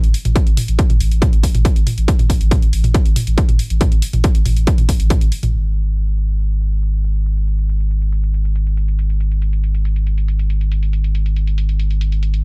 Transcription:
0.04 sub bass A1, closed hi-hat
0.14 open hi-hat
0.25 sub bass A1, closed hi-hat, mid tom
0.36 kick, closed hi-hat
0.47 sub bass A1, closed hi-hat
0.57 mid tom, open hi-hat
0.68 sub bass A1, closed hi-hat
0.79 kick, closed hi-hat
0.90 sub bass A1, closed hi-hat, mid tom
1.00 sub bass A1, open hi-hat
1.11 sub bass A1, closed hi-hat
1.22 kick, closed hi-hat, mid tom
1.33 sub bass A1, closed hi-hat
1.43 kick, open hi-hat
1.54 sub bass A1, closed hi-hat, mid tom
1.65 kick, closed hi-hat
1.76 sub bass A1, closed hi-hat
1.87 mid tom, open hi-hat
1.98 sub bass A1, closed hi-hat
2.08 kick, closed hi-hat
2.19 sub bass A1, closed hi-hat, mid tom
2.30 kick, open hi-hat
2.41 sub bass A1, closed hi-hat
2.51 kick, closed hi-hat, mid tom
2.62 sub bass A1, closed hi-hat
2.73 sub bass A1, open hi-hat
2.84 sub bass A1, closed hi-hat, mid tom
2.94 kick, closed hi-hat
3.05 sub bass A1, closed hi-hat
3.16 mid tom, open hi-hat
3.27 sub bass A1, closed hi-hat
3.38 kick, closed hi-hat
3.49 sub bass A1, closed hi-hat, mid tom
3.59 open hi-hat
3.70 sub bass A1, closed hi-hat
3.81 kick, closed hi-hat, mid tom
3.92 sub bass A1, closed hi-hat
4.02 open hi-hat
4.13 sub bass A1, closed hi-hat, mid tom
4.24 kick, closed hi-hat
4.35 sub bass A1, closed hi-hat
4.46 sub bass A1, mid tom, open hi-hat
4.56 sub bass A1, closed hi-hat
4.67 kick, closed hi-hat
4.78 sub bass A1, closed hi-hat, mid tom
4.89 kick, open hi-hat
5.00 sub bass A1, closed hi-hat
5.10 kick, closed hi-hat, mid tom
5.21 sub bass A1, closed hi-hat
5.32 open hi-hat
5.43 sub bass A1, closed hi-hat, mid tom
5.53 sub bass G#1, closed hi-hat
5.65 closed hi-hat
5.75 closed hi-hat
5.86 closed hi-hat
5.97 closed hi-hat
6.08 closed hi-hat
6.18 closed hi-hat
6.29 closed hi-hat
6.40 closed hi-hat
6.51 closed hi-hat
6.61 closed hi-hat
6.72 closed hi-hat
6.83 closed hi-hat
6.94 closed hi-hat
7.05 closed hi-hat
7.16 closed hi-hat
7.26 closed hi-hat
7.37 closed hi-hat
7.48 closed hi-hat
7.59 closed hi-hat
7.69 closed hi-hat
7.80 closed hi-hat
7.91 closed hi-hat
8.02 closed hi-hat
8.12 closed hi-hat
8.23 closed hi-hat
8.34 closed hi-hat
8.45 closed hi-hat
8.56 closed hi-hat
8.67 closed hi-hat
8.77 closed hi-hat
8.88 closed hi-hat
8.99 closed hi-hat
9.10 closed hi-hat
9.20 closed hi-hat
9.31 closed hi-hat
9.42 closed hi-hat
9.53 closed hi-hat
9.64 closed hi-hat
9.75 closed hi-hat
9.85 closed hi-hat
9.96 closed hi-hat
10.07 closed hi-hat
10.18 closed hi-hat
10.28 closed hi-hat
10.39 closed hi-hat
10.50 closed hi-hat
10.61 closed hi-hat
10.72 closed hi-hat
10.83 closed hi-hat
10.93 closed hi-hat
11.04 closed hi-hat
11.15 closed hi-hat
11.26 closed hi-hat
11.36 closed hi-hat
11.47 closed hi-hat
11.58 closed hi-hat
11.69 closed hi-hat
11.80 closed hi-hat
11.91 closed hi-hat
12.01 closed hi-hat
12.12 closed hi-hat
12.23 closed hi-hat
12.34 closed hi-hat

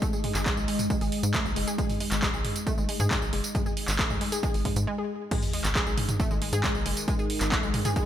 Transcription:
Already playing: ambient pad G#3 G#4 D#5 D#6
0.02 synth arpeggio sound A3, kick, closed hi-hat, tambourine
0.13 synth arpeggio sound G#3, tambourine
0.24 synth arpeggio sound G#3, mid tom, open hi-hat
0.35 analog synth bass G#1, synth arpeggio sound G#4, clap, closed hi-hat, tambourine
0.46 synth arpeggio sound G#3, kick, clap, closed hi-hat, tambourine
0.57 analog synth bass B1, tambourine
0.68 synth arpeggio sound G#3, open hi-hat
0.79 closed hi-hat, mid tom, tambourine
0.90 synth arpeggio sound G#3, kick, closed hi-hat, tambourine
1.01 analog synth bass G#1, synth arpeggio sound G#4, open hi-hat, tambourine
1.12 open hi-hat
1.23 analog synth bass G#2, closed hi-hat, tambourine
1.34 synth arpeggio sound A3, kick, clap, closed hi-hat, mid tom, tambourine
1.45 analog synth bass B1, synth arpeggio sound G#3, tambourine
1.56 analog synth bass F#1, synth arpeggio sound G#3, open hi-hat
1.67 synth arpeggio sound G#4, closed hi-hat, tambourine
1.78 synth arpeggio sound G#3, kick, closed hi-hat, tambourine
1.89 mid tom, open hi-hat, tambourine
2.00 synth arpeggio sound G#3, open hi-hat
2.11 analog synth bass G#1, clap, closed hi-hat, tambourine
2.22 synth arpeggio sound G#3, kick, clap, closed hi-hat, tambourine
2.34 analog synth bass B1, synth arpeggio sound G#4, tambourine
2.45 mid tom, open hi-hat
2.56 closed hi-hat, tambourine
2.67 synth arpeggio sound A3, kick, closed hi-hat, tambourine
2.78 analog synth bass G#1, synth arpeggio sound G#3, tambourine
2.89 synth arpeggio sound G#3, open hi-hat
3.00 analog synth bass G#2, synth arpeggio sound G#4, closed hi-hat, mid tom, tambourine
3.11 synth arpeggio sound G#3, kick, clap, closed hi-hat, tambourine
3.22 analog synth bass B1, tambourine
3.33 analog synth bass F#1, synth arpeggio sound G#3, open hi-hat
3.44 closed hi-hat, tambourine
3.55 synth arpeggio sound G#3, kick, closed hi-hat, mid tom, tambourine
3.66 synth arpeggio sound G#4, tambourine
3.77 open hi-hat
3.88 analog synth bass G#1, clap, closed hi-hat, tambourine
3.99 synth arpeggio sound A3, kick, clap, closed hi-hat
4.10 analog synth bass B1, synth arpeggio sound G#3, mid tom, tambourine
4.21 synth arpeggio sound G#3, open hi-hat
4.32 synth arpeggio sound G#4, closed hi-hat, tambourine
4.43 synth arpeggio sound G#3, kick, closed hi-hat, tambourine
4.54 analog synth bass G#1, open hi-hat, tambourine
4.65 synth arpeggio sound G#3, kick, mid tom, open hi-hat
4.76 analog synth bass G#2, closed hi-hat, tambourine
4.87 synth arpeggio sound G#3
4.98 synth arpeggio sound G#4
5.31 synth drone G#2 D#3, ambient pad G#3, synth arpeggio sound G#3, kick, closed hi-hat, crash, tambourine, sub drop
5.43 open hi-hat, tambourine
5.47 ambient pad D#5
5.53 synth arpeggio sound G#3, open hi-hat
5.58 ambient pad G#4
5.64 analog synth bass G#1, clap, closed hi-hat, tambourine
5.75 synth arpeggio sound G#3, kick, clap, closed hi-hat, tambourine
5.86 analog synth bass B1, synth arpeggio sound G#4, tambourine
5.98 mid tom, open hi-hat
6.09 closed hi-hat, mid tom, tambourine
6.17 synth arpeggio sound A3, ambient pad D#6, kick, closed hi-hat, tambourine
6.31 analog synth bass G#1, synth arpeggio sound G#3, tambourine
6.42 synth arpeggio sound G#3, open hi-hat
6.53 analog synth bass G#2, synth arpeggio sound G#4, closed hi-hat, tambourine
6.64 synth arpeggio sound G#3, kick, clap, closed hi-hat, tambourine
6.75 analog synth bass B1, tambourine
6.86 analog synth bass F#1, synth arpeggio sound G#3, open hi-hat
6.97 closed hi-hat, tambourine
7.08 synth arpeggio sound G#3, kick, closed hi-hat, tambourine
7.19 synth arpeggio sound G#4, tambourine
7.30 open hi-hat
7.41 analog synth bass G#1, clap, closed hi-hat, tambourine
7.52 synth arpeggio sound A3, kick, clap, closed hi-hat, tambourine
7.63 analog synth bass B1, synth arpeggio sound G#3, tambourine
7.74 synth arpeggio sound G#3, mid tom, open hi-hat
7.85 synth arpeggio sound G#4, closed hi-hat, mid tom, tambourine
7.96 synth arpeggio sound G#3, kick, closed hi-hat, tambourine

